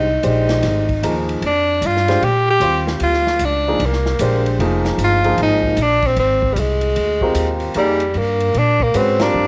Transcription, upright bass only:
Already playing: C2
0.23 A#1
0.63 G#1
1.03 D#2
1.42 F2
1.82 G2
2.21 A#2
2.60 D#2
3.00 D2
3.39 C#2
3.80 C2
4.19 A#1
4.59 F1
4.98 G1
5.38 G#1
5.77 A#1
6.17 G#1
6.56 C2
6.96 D2
7.35 D#2
7.75 F2
8.15 G2
8.54 A#2
8.94 G#2
9.34 G2

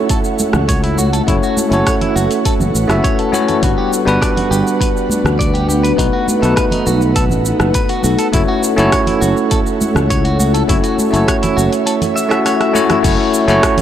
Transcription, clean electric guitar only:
0.10 A4
0.69 C#5
0.84 E4
0.98 F#4
1.13 A4
1.28 E4
1.43 F#4
1.73 A4
1.87 C#5
2.01 E4
2.16 F#4
2.46 A4
3.04 C#5
3.19 A4
3.33 F#4
3.48 A4
3.63 F#4
3.78 G4
4.07 B4
4.22 D5
4.36 F#4
4.51 G4
4.81 B4
5.39 D5
5.54 G4
5.69 G4
5.83 B4
5.98 D#4
6.13 F#4
6.42 A4
6.56 B4
6.72 D#4
6.87 F#4
7.16 A4
7.75 B4
7.89 F#4
8.04 F#4
8.19 A4
8.34 E4
8.48 F#4
8.78 A4
8.93 C#5
9.07 E4
9.21 F#4
9.51 A4
10.10 C#5
10.25 F#4
10.40 F#4
10.54 A4
10.69 E4
10.84 F#4
11.13 A4
11.28 C#5
11.43 E4
11.57 F#4
11.86 A4
12.16 E5
12.30 E5
12.46 C#5
12.61 E5
12.75 C#5
12.90 E4

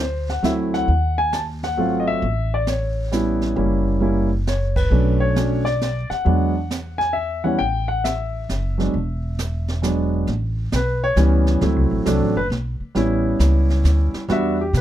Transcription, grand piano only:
0.00 C5
0.30 F#5
0.43 F#3 A3 C4 E4 E5
0.74 F#5
1.18 G#5
1.33 A5
1.64 F#5
1.77 F#3 A3 C4 F4
2.00 D#5
2.08 E5
2.54 D5
2.68 C#5
3.12 G3 B3 C#4 E4
3.56 G3 A#3 C#4 E4
4.00 G3 A#3 C#4 E4
4.48 C#5
4.76 B4
4.90 F#3 A3 C#4 D4
5.20 C#5
5.35 F#3 A3 C#4 D4
5.65 D5
6.10 F#5
6.25 F#3 G#3 B3 D4
6.98 G#5
7.13 E5
7.44 E3 G3 B3 C#4 F#5
7.59 G5
7.88 F#5
8.04 E5
8.78 F#3 G#3 B3 D4
9.82 F#3 G#3 B3 D4
10.76 B4
11.04 C#5
11.17 E3 G3 B3 C#4
11.61 F#3 A3 C4 E4
12.06 F#3 A3 C4 D4 A4
12.37 B4
12.95 G3 B3 C#4 E4
14.29 G3 B3 D4 F#4 E5
14.61 G4
14.77 B4

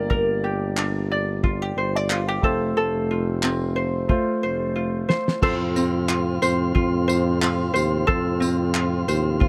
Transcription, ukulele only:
Already playing: A#4 D5
0.10 A#4
0.44 G4
0.78 D4
1.11 D5
1.43 F4
1.62 G4
1.78 C5
1.96 D5
2.11 F4
2.28 G4
2.44 A4
2.77 A4
3.11 F4
3.44 C4
3.76 C5
4.09 F4
4.43 C5
4.76 F4
5.09 C5
5.42 A4 C5
5.76 C4
6.09 F4
6.42 C5
6.75 F4
7.08 C5
7.41 F4
7.74 C5
8.07 A4 C5
8.40 C4
8.74 F4
9.08 C5
9.40 F4

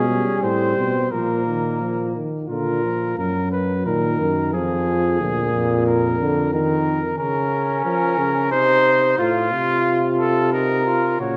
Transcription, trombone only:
0.08 G3
1.12 F3
1.46 D#3
1.81 F3
2.15 D#3
2.50 D3
2.84 F3
3.18 F#3
3.86 D#3
4.53 F3
5.21 A#2
6.19 D3
6.52 D#3
7.18 C#3
7.84 F3
8.17 C#3
8.51 C3
9.18 A2
9.51 C3
11.21 C#3

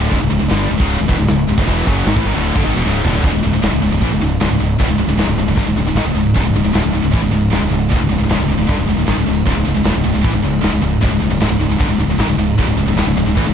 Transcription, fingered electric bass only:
Already playing: D1
0.12 C#1
0.22 C#1
0.32 C#1
0.42 C#1
0.51 G1
0.71 C#1
0.80 C#1
1.01 C#1
1.09 E1
1.20 C#1
1.30 C#1
1.49 C#1
1.57 D1
1.68 E1
1.87 F#1
2.07 G#1
2.16 A1
2.26 G#1
2.37 D1
2.56 G1
2.67 G#1
2.77 E1
2.87 C#1
3.06 D1
3.23 C#1
3.34 C#1
3.44 C#1
3.54 C#1
3.63 D1
3.73 C#1
3.83 C#1
3.92 C#1
4.02 A1
4.12 C#1
4.23 C#1
4.41 C#1
4.50 C#1
4.61 C#1
4.80 D1
4.88 C#1
4.98 C#1
5.07 C#1
5.18 C#1
5.27 C#1
5.38 C#1
5.47 C#1
5.57 G1
5.66 C#1
5.76 C#1
5.85 C#1
5.95 G#1
6.05 C#1
6.14 C#1
6.36 C#1
6.45 C#1
6.55 C#1
6.65 C#1
6.76 D1
6.86 C#1
6.94 C#1
7.05 C#1
7.14 A1
7.23 C#1
7.33 C#1
7.53 C#1
7.62 C#1
7.71 C#1
7.92 D1
8.01 C#1
8.10 C#1
8.20 C#1
8.29 C#1
8.40 C#1
8.48 C#1
8.58 C#1
8.69 G1
8.79 C#1
8.88 C#1
8.98 C#1
9.08 G#1
9.18 C#1
9.28 C#1
9.47 C#1
9.57 C#1
9.66 C#1
9.77 C#1
9.85 D1
9.95 C#1
10.06 C#1
10.16 C#1
10.24 A1
10.34 C#1
10.44 C#1
10.63 C#1
10.73 C#1
10.83 C#1
11.03 D1
11.12 C#1
11.21 C#1
11.30 C#1
11.41 C#1
11.50 C#1
11.60 C#1
11.69 C#1
11.80 G1
11.88 C#1
11.98 C#1
12.08 C#1
12.18 G#1
12.27 C#1
12.37 C#1
12.59 C#1
12.66 C#1
12.77 C#1
12.86 C#1
12.96 D1
13.07 C#1
13.16 C#1
13.27 C#1
13.37 A1
13.47 C#1

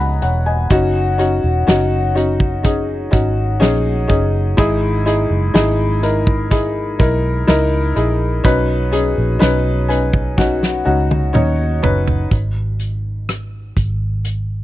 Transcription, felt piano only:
Already playing: B3 D#4 G#4 B4 C#5 D#5 G#5 A#5
0.00 F#5 B5
0.22 C#5 F#5
0.46 D#5 G#5
0.71 C#4 D#4 F#4
1.18 C#4 D#4 F#4
1.67 C#4 D#4 F#4
2.15 C#4 D#4 F#4
2.63 C#4 D#4 G#4
3.11 C#4 D#4 F#4
3.60 C#4 D#4 G#4
4.08 C#4 D#4 G#4
4.57 G#2 D#4 E4 G#4
5.06 D#4 E4 G#4
5.54 D#4 E4 G#4
6.03 D#4 E4 A#4
6.50 D#4 E4 G#4
6.99 D#4 E4 A#4
7.47 D#4 E4 A#4
7.96 D#4 E4 G#4
8.44 B2 C#4 D#4 B4
8.92 C#4 D#4 G#4
9.39 C#4 D#4 B4
9.88 C#4 D#4 B4 G#5
10.37 C#4 D#4 F#4 F#5
10.85 C#4 D#4 F#4 F#5
11.33 C#4 D#4 C#5 D#5
11.82 C#4 D#4 B4 C#5

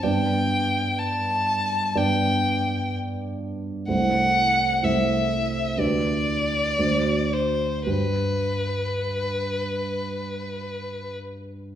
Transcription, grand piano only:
0.03 G2 B3 D4 D5
1.95 G2 B3 D4 D5
3.88 C2 A3 E4 C5
4.82 C2 A3 E4 C5
5.78 D2 D4 G4 B4
6.79 D2 D4 F#4 C5
7.87 G2 D4 G4 B4

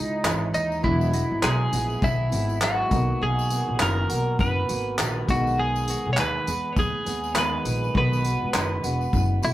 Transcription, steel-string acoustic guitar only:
Already playing: G#3 D#4 E4
0.23 E3 G#3 D#4 E4
0.82 E2 B2 F#3 G#3 B3 E4
1.11 F#3 G#3 B3 E4
1.42 F#3 G#3 B3 E4
1.71 F#3 G#3 B3 E4
2.30 F#3 G#3 B3 E4
2.60 F#3 G#3 B3 E4
2.90 B2 D#3 A#3 B3 F#4
3.50 A#3 B3 F#4
3.79 D#3 A#3 B3 F#4
4.09 A#3 B3 F#4
4.68 A#3 B3 F#4
4.98 D#3 A#3 B3 F#4
5.27 B2 D#3 G#3 B3 G#4
5.87 G#3 B3 G#4
6.16 D#3 G#3 B3 G#4
6.46 G#3 B3 G#4
7.05 G#3 B3 G#4
7.34 D#3 G#3 B3 G#4
7.94 B2 D#3 G#3 B3 F#4
8.24 G#3 B3 F#4
8.54 D#3 G#3 B3 F#4
8.83 G#3 B3 F#4
9.42 G#3 B3 F#4

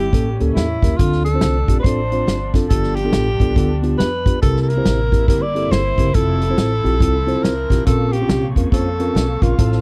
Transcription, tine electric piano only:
0.13 A2 A#3 C#4 G4 A4
0.40 A#3 C#4 G4 A4
0.83 A#3 C#4 G4 A#4
1.00 D3 C4 D4 F4 A4
1.34 C4 D4 F4 C5
1.69 C4 D4 F4 G4
1.85 C4 D4 F4 A4
2.12 C4 D4 F4 C5
2.54 C4 D4 F4 A4
2.71 G2 B3 D4 F4 G4
3.04 B3 D4 F4 A4
3.40 B3 D4 F4 A4
3.56 B3 D4 F4 A4
3.83 B3 D4 F4 G4
4.26 B3 D4 F4 G4
4.42 C3 C4 E4 G4 A#4
4.77 C4 E4 G4 C5
5.12 C4 E4 G4 A#4
5.28 C4 E4 G4 A#4
5.55 C4 E4 G4 A4
5.99 C4 E4 G4 A#4
6.15 C4 E4 F4 A4
6.50 C4 E4 F4 C5
6.84 C4 E4 F4 G4
7.01 C4 E4 F4 A4
7.27 C4 E4 F4 C5
7.70 C4 E4 F4 G4
7.87 A#2 C4 C#4 F4 A#4
8.22 C4 C#4 F4 G4
8.56 C4 C#4 F4 A#4
8.72 C4 C#4 F4 C5
9.00 C4 C#4 F4 A#4
9.42 C4 C#4 F4 A#4
9.59 A2 C4 E4 F4 A4

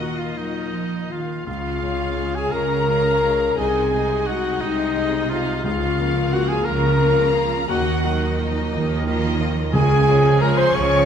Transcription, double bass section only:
1.47 C#2
2.52 C#2
3.57 C2
4.61 C2
5.65 C#2
6.67 C#2
7.70 D#2
8.73 D#2
9.75 C#2
10.75 C#2

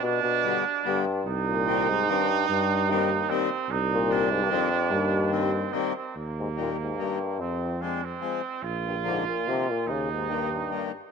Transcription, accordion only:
0.44 D3 G3 B3
0.85 D3 G3 B3
1.67 D#3 G3 C4
2.09 D#3 G3 C4
2.90 D#3 G3 C4
3.29 D#3 G3 C4
4.09 D#3 G3 C4
4.49 D#3 G3 C4
5.31 D#3 G3 C4
5.72 D#3 G3 C4
6.56 D#3 G3 A#3
6.98 D#3 G3 A#3
7.81 F3 G#3 C4
8.21 F3 G#3 C4
9.03 D3 F3 A#3
9.45 D3 F3 A#3
10.29 D#3 G3 A#3
10.70 D#3 G3 A#3

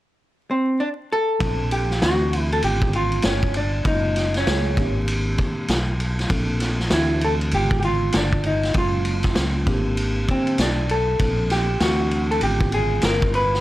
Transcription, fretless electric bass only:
1.41 A#1
2.02 D2
2.63 G#1
3.24 G1
3.85 F#1
4.47 C#2
4.77 G#1
5.69 B1
6.30 A#1
6.92 D2
7.53 G#1
8.14 G1
8.75 F#1
9.37 C#2
9.67 G#1
10.58 B1
11.19 A#1
11.80 D2
12.42 G#1
13.03 G1

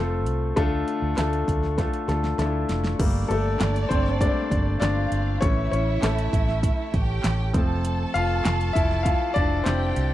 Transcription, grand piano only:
Already playing: A3 C4 F4 A4 C5
0.56 D3 A3 D4 F4 A4
1.17 A3 D4 F4 A4
1.78 A3 D4 F4 A4
2.08 A3 D4 F4 A4
2.39 A3 D4 E4 A4
2.45 F4
2.99 G3 A3 A#3
3.28 A3 A4
3.89 C4 C5
4.21 G3 A3 A#3 D4 D5
4.80 D4 D5
5.41 E3 A3 C#4 C#5
5.72 C#4 C#5
6.03 A3 A4
7.54 F3 A3 C4
8.14 F4 F5
8.73 E4 E5
9.03 F4 F5
9.34 D4 D5
9.64 C5
9.68 C4

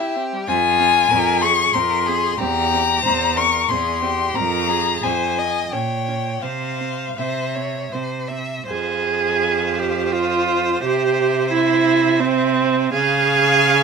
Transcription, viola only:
0.00 E4
0.16 C4
0.33 G3
0.48 C4
0.79 C4
1.11 C4
1.43 C4
1.75 C4
2.08 C4
2.40 C4
2.73 C4
3.05 C4
3.37 C4
3.70 C4
4.02 C4
4.34 C4
4.68 C4
5.03 C4
5.37 C4
5.73 C#4
6.08 C#4
6.43 C4
6.80 C4
7.18 C4
7.56 C4
7.94 C4
8.31 C4
8.69 G#4
9.78 G4
10.12 F4
10.83 G4
11.52 E4
12.20 C4
12.93 G#4

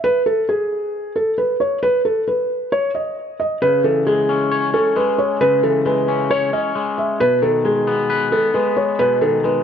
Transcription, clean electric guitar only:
3.62 C#3
3.84 E3
4.07 G#3
4.29 C#4
4.51 C#5
4.74 C#4
4.96 G#3
5.41 C#3
5.63 E3
5.86 G#3
6.08 C#4
6.31 C#5
6.53 C#4
6.75 G#3
7.20 B2
7.42 D#3
7.65 G#3
7.87 B3
8.10 B4
8.32 B3
8.55 G#3
8.99 B2
9.22 D#3
9.44 G#3

